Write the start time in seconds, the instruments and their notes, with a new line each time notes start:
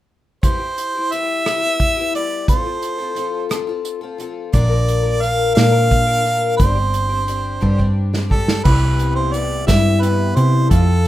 0.43 twelve-string acoustic guitar C3 G3 B3 E4 G4, harmonica C5, kick, closed hi-hat
0.60 twelve-string acoustic guitar E4 G4
0.78 closed hi-hat
0.95 twelve-string acoustic guitar B3 E4 G4
1.12 twelve-string acoustic guitar G3 B3 E4 G4, harmonica E5, closed hi-hat
1.45 twelve-string acoustic guitar C3 G3 B3 E4 G4, cross-stick, closed hi-hat
1.63 twelve-string acoustic guitar B3 E4 G4
1.80 kick, closed hi-hat
1.97 twelve-string acoustic guitar B3 E4 G4
2.14 twelve-string acoustic guitar G3 B3 E4 G4, harmonica D5, closed hi-hat
2.48 twelve-string acoustic guitar F3 C4 F4 A4, harmonica C5, kick, closed hi-hat
2.64 twelve-string acoustic guitar C4 F4 A4
2.82 closed hi-hat
2.98 twelve-string acoustic guitar C4 F4 A4
3.15 twelve-string acoustic guitar F3 C4 F4 A4, closed hi-hat
3.49 twelve-string acoustic guitar F3 C4 F4 A4, cross-stick, closed hi-hat
3.67 twelve-string acoustic guitar C4 F4 A4
3.85 closed hi-hat
4.01 twelve-string acoustic guitar C4 F4 A4
4.18 twelve-string acoustic guitar F3 C4 F4 A4, closed hi-hat
4.52 picked electric bass A#1, twelve-string acoustic guitar A#2 D3 F3 A#3 D4 A#4, harmonica D5, kick, closed hi-hat
4.70 twelve-string acoustic guitar F3 A#3 D4 A#4
4.88 closed hi-hat
5.03 twelve-string acoustic guitar F3 A#3 D4 A#4
5.21 twelve-string acoustic guitar F3 A#3 D4 A#4, harmonica F5, closed hi-hat
5.55 twelve-string acoustic guitar A#2 D3 F3 A#3 D4 A#4, picked electric bass A#2, harmonica F5, snare, closed hi-hat
5.72 twelve-string acoustic guitar F3 A#3 D4 A#4
5.91 kick, closed hi-hat
6.07 twelve-string acoustic guitar F3 A#3 D4 A#4
6.24 twelve-string acoustic guitar F3 A#3 D4 A#4, closed hi-hat
6.58 picked electric bass G1, twelve-string acoustic guitar G2 D3 G3 C4 D4 G4, harmonica C5, kick, closed hi-hat
6.75 twelve-string acoustic guitar G3 C4 D4 G4
6.94 closed hi-hat
7.09 twelve-string acoustic guitar G3 C4 D4 G4
7.27 twelve-string acoustic guitar G3 C4 D4 G4, closed hi-hat
7.61 twelve-string acoustic guitar G2 D3 G3 C4 D4 G4, picked electric bass G2, kick
7.78 twelve-string acoustic guitar G3 C4 D4 G4, kick
8.13 twelve-string acoustic guitar G3 C4 D4 G4, snare
8.30 twelve-string acoustic guitar G3 C4 D4 G4, harmonica A4, kick
8.48 snare
8.64 picked electric bass C2, clean electric guitar C3 E3 G3 B3 E4, twelve-string acoustic guitar C3 G3 B3 E4 G4, harmonica B4, kick, crash
8.99 closed hi-hat
9.16 harmonica C5
9.32 twelve-string acoustic guitar G3 B3 E4 G4, harmonica D5, closed hi-hat
9.67 picked electric bass G2, twelve-string acoustic guitar C3 G3 B3 E4 G4, harmonica E5, kick, snare, closed hi-hat
10.02 clean electric guitar C3 E3 G3 B3 E4, harmonica B4, closed hi-hat
10.35 picked electric bass C3, twelve-string acoustic guitar E4 G4, harmonica C5, closed hi-hat
10.70 clean electric guitar F2 C3 F3 A3 C4 F4, picked electric bass F2, twelve-string acoustic guitar F3 C4 F4 A4, harmonica A4, kick, closed hi-hat